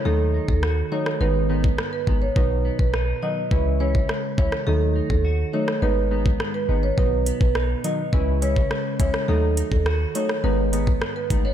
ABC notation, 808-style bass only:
X:1
M:4/4
L:1/16
Q:1/4=104
K:C#m
V:1 name="808-style bass" clef=bass
D,,3 D,,3 z2 G,,,4 z2 G,,,2 | B,,,3 B,,,3 z2 C,,4 z2 C,, z | D,,3 D,,3 z2 G,,,4 z2 G,,,2 | B,,,3 B,,,3 z2 C,,4 z2 C,, z |
D,,3 D,,3 z2 G,,,4 z2 G,,,2 |]